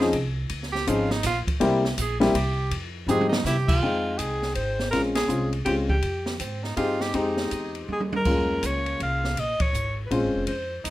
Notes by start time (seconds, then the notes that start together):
Already playing: F2
0.00 F3 C4 C#4 D#4 G#4, snare
0.13 C2, kick, ride
0.49 C#2, kick, ride
0.63 snare
0.72 G4, snare
0.87 G#1 F3 C4 C#4 D#4 F4 G#4, kick, hi-hat pedal, ride
1.11 D#4, snare
1.23 A#1 F4, kick, snare, hi-hat pedal, ride
1.47 muted upright bass stroke, kick, ride
1.60 C2 G3 A#3 C4 E4 G4, kick, ride
1.85 snare
1.97 A#1 G#4, kick, hi-hat pedal, ride
2.20 G3 A#3 C4 E4 G4, snare, ride
2.34 C2 G4, kick, ride
2.71 F2, kick, ride
3.07 G#2 F3 G#3 C4 D#4 G4 G#4, floor tom, hi-hat pedal
3.21 high tom
3.29 D#4, snare
3.44 C3 E4 G4, snare, hi-hat pedal
3.68 F4, kick, crash
3.82 F2 G#3 C4 D#4 G5
4.18 C2 G#4, kick, hi-hat pedal, ride
4.42 snare
4.55 G#1 C5, kick, ride
4.79 snare
4.91 A#1 G#3 C4 C#4 F4 A#4, kick, snare, ride
5.15 G#4, snare, ride
5.28 C2 G#3 C4 C#4 F4, hi-hat pedal
5.53 ride
5.65 C#2 G#3 C4 C#4 F4 G4, kick, ride
5.89 G4, kick
6.02 F2, kick, ride
6.26 snare
6.39 G#2 C4, kick, hi-hat pedal, ride
6.63 D#4, snare
6.76 G2 C4 D#4 F4 G4 G#4, kick, ride
7.01 G4, snare
7.14 F2 G#3 C4 D#4 G4, kick, ride
7.37 snare
7.51 E2, kick, hi-hat pedal, ride
7.75 ride
7.88 D#2, high tom
7.92 G#4
8.00 high tom
8.13 A#4, high tom
8.25 F2 G#3 A#3 C#4 F4, kick, crash
8.63 C#2 C#5, kick, hi-hat pedal, ride
8.86 ride
9.00 C2 F5, kick, ride
9.24 snare
9.37 A#1 D#5, kick, ride
9.60 C#5, muted upright bass stroke, kick, ride
9.73 G#1, hi-hat pedal
10.06 B4
10.11 A#1 G#3 C4 C#4 F4 C5, kick, ride
10.22 G#1
10.35 F1
10.47 F2 C5, kick, ride
10.84 D2 D#4, kick, hi-hat pedal, ride